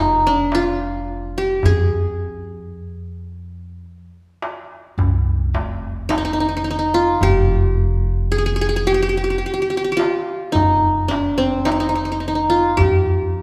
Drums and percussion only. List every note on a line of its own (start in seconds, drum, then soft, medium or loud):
0.52 darbuka tek medium
1.63 darbuka dum medium
4.42 darbuka tek medium
4.99 darbuka dum medium
5.55 darbuka tek medium
6.10 darbuka tek medium
7.21 darbuka dum medium
9.99 darbuka tek medium
10.55 darbuka dum medium
11.11 darbuka tek medium
11.67 darbuka tek medium
12.78 darbuka dum medium
13.34 darbuka ka soft